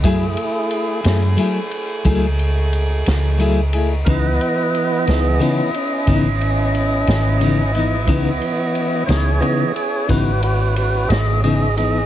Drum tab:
RD |xxxxxxxxxxxx|xxxxxxxxxxxx|xxxxxxxxxxxx|
SD |---o-----o--|---o-----o--|---o-----o--|
BD |o-----o-----|o-----o-----|o-----o-----|